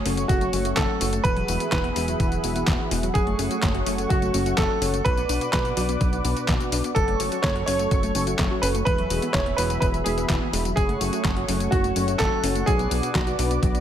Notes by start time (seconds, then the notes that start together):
Already playing: A3 G#4 C#5 F#5 C#6
0.06 F#1 F#3 C#4 F#4 A4 C#5, open hi-hat, tambourine
0.17 A3, closed hi-hat, tambourine
0.28 F#1 F#3 F#4, kick, closed hi-hat, tambourine
0.41 A3, closed hi-hat, tambourine
0.53 F#1 F#3 C#4 F#4 A4 C#5, open hi-hat, tambourine
0.65 F#3 C#4 F#4 A4 E5, closed hi-hat, tambourine
0.76 F#1 A4, kick, snare, clap, closed hi-hat, tambourine
0.89 F#4
1.01 F#1 C#4 F#4 A4 C#5, open hi-hat, tambourine
1.13 A3, closed hi-hat, tambourine
1.24 E1 E3 G#4 B4 E5 B5, kick, closed hi-hat, tambourine
1.37 F#3, closed hi-hat
1.48 E1 E3 G#3 B3 E4 F#4 G#4, open hi-hat, tambourine
1.60 B3, closed hi-hat, tambourine
1.71 E1 E4 B4, kick, snare, clap, closed hi-hat, tambourine
1.84 B3, closed hi-hat
1.96 E1 E3 G#3 B3 E4 F#4 G#4, open hi-hat, tambourine
2.08 F#3, closed hi-hat, tambourine
2.20 E1 E3, kick, closed hi-hat, tambourine
2.32 F#3, closed hi-hat, tambourine
2.44 E1 E3 G#3 B3 E4 F#4 G#4, open hi-hat, tambourine
2.56 E3 B3 E4 F#4 B4, closed hi-hat, tambourine
2.67 E1 E4, kick, snare, clap, closed hi-hat, tambourine
2.79 B3
2.91 E1 G#3 B3 E4 F#4 G#4, open hi-hat, tambourine
3.03 F#3, closed hi-hat, tambourine
3.14 F#1 F#3 A3 G#4 C#5 C#6, kick, closed hi-hat, tambourine
3.27 A3, closed hi-hat
3.39 F#1 F#3 C#4 F#4 A4 C#5, open hi-hat, tambourine
3.51 F#4, closed hi-hat, tambourine
3.63 F#1 A4, kick, snare, clap, closed hi-hat, tambourine
3.75 F#4, closed hi-hat
3.86 F#1 F#3 C#4 F#4 A4 C#5, open hi-hat, tambourine
3.98 A3, closed hi-hat, tambourine
4.09 F#1 F#3 F#4, kick, closed hi-hat, tambourine
4.22 A3, closed hi-hat, tambourine
4.34 F#1 F#3 C#4 F#4 A4 C#5, open hi-hat, tambourine
4.46 F#3 C#4 F#4 A4 E5, closed hi-hat, tambourine
4.57 F#1 A4, kick, snare, clap, closed hi-hat, tambourine
4.70 F#4
4.82 F#1 C#4 F#4 A4 C#5, open hi-hat, tambourine
4.94 A3, closed hi-hat, tambourine
5.05 B1 F#3 B4 D5 D6, kick, closed hi-hat, tambourine
5.17 B3, closed hi-hat, tambourine
5.29 B1 B2 B3 D4 F#4 B4, open hi-hat, tambourine
5.41 F#4, closed hi-hat, tambourine
5.52 B1 B4, kick, snare, clap, closed hi-hat, tambourine
5.65 F#4, closed hi-hat, tambourine
5.77 B1 B2 B3 D4 F#4 B4, open hi-hat, tambourine
5.89 B3, closed hi-hat, tambourine
6.01 B1 F#3, kick, closed hi-hat, tambourine
6.13 B3, closed hi-hat, tambourine
6.25 B1 B2 B3 D4 F#4 B4, open hi-hat, tambourine
6.37 F#4, closed hi-hat, tambourine
6.48 B1 B4, kick, snare, clap, closed hi-hat, tambourine
6.60 F#4, closed hi-hat, tambourine
6.72 B1 B3 D4 F#4 B4, open hi-hat, tambourine
6.84 B3, closed hi-hat, tambourine
6.95 F#1 F#3 A4 C#5 C#6, kick, closed hi-hat, tambourine
7.08 A3, closed hi-hat
7.20 F#1 F#3 C#4 F#4 A4 C#5, open hi-hat, tambourine
7.32 F#4, closed hi-hat, tambourine
7.42 F#1 A4 C#5, kick, snare, clap, closed hi-hat, tambourine
7.56 F#4, closed hi-hat
7.66 F#1 F#3 C#4 F#4 A4 C#5, open hi-hat, tambourine
7.79 A3, closed hi-hat, tambourine
7.91 F#1 F#3, kick, closed hi-hat, tambourine
8.03 A3, closed hi-hat, tambourine
8.15 F#1 F#3 C#4 F#4 A4 C#5, open hi-hat, tambourine
8.27 F#3 F#4 A4 E5, closed hi-hat, tambourine
8.39 F#1 A4, kick, snare, clap, closed hi-hat, tambourine
8.51 F#4
8.62 F#1 C#4 F#4 A4 B4 C#5, open hi-hat, tambourine
8.75 A3, closed hi-hat, tambourine
8.85 E1 E3 G#4 B4 E5 B5, kick, closed hi-hat, tambourine
8.98 F#3, closed hi-hat
9.10 E1 E3 G#3 B3 E4 F#4 G#4, open hi-hat, tambourine
9.22 B3, closed hi-hat, tambourine
9.33 E1 E4 C#5, kick, snare, clap, closed hi-hat, tambourine
9.46 B3, closed hi-hat
9.56 E1 E3 G#3 B3 E4 F#4 G#4 B4, open hi-hat, tambourine
9.70 F#3, closed hi-hat, tambourine
9.80 E1 E3 B4, kick, closed hi-hat, tambourine
9.94 F#3, closed hi-hat, tambourine
10.04 E1 E3 G#3 B3 E4 F#4 G#4, open hi-hat, tambourine
10.18 E3 B3 E4 F#4 B4, closed hi-hat, tambourine
10.29 E1 E4, kick, snare, clap, closed hi-hat, tambourine
10.42 B3
10.53 E1 G#3 B3 E4 F#4 G#4, open hi-hat, tambourine
10.65 F#3, closed hi-hat, tambourine
10.76 F#1 F#3 A3 G#4 C#5 F#5 C#6, kick, closed hi-hat, tambourine
10.89 A3, closed hi-hat
11.01 F#1 F#3 C#4 F#4 A4 C#5, open hi-hat, tambourine
11.13 F#4, closed hi-hat, tambourine
11.25 F#1 A4, kick, snare, clap, closed hi-hat, tambourine
11.37 F#4, closed hi-hat
11.48 F#1 F#3 C#4 F#4 A4 C#5, open hi-hat, tambourine
11.60 A3, closed hi-hat, tambourine
11.71 F#1 F#3 F#4, kick, closed hi-hat, tambourine
11.84 A3, closed hi-hat, tambourine
11.96 F#1 F#3 C#4 F#4 A4 C#5, open hi-hat, tambourine
12.08 F#3 C#4 F#4 A4 E5, closed hi-hat, tambourine
12.18 F#1 A4, kick, snare, clap, closed hi-hat, tambourine
12.32 F#4
12.44 F#1 C#4 F#4 A4 C#5, open hi-hat, tambourine
12.55 A3, closed hi-hat, tambourine
12.66 B1 F#3 G#4 B4 D5 D6, kick, closed hi-hat, tambourine
12.79 B3, closed hi-hat, tambourine
12.91 B1 B2 B3 D4 F#4 B4, open hi-hat, tambourine
13.03 F#4, closed hi-hat, tambourine
13.14 B1 F#4 B4, kick, snare, clap, closed hi-hat, tambourine
13.27 F#4, closed hi-hat, tambourine
13.39 B1 B2 B3 D4 F#4 B4, open hi-hat, tambourine
13.51 B3, closed hi-hat, tambourine
13.63 B1 F#3, kick, closed hi-hat, tambourine
13.75 B3, closed hi-hat, tambourine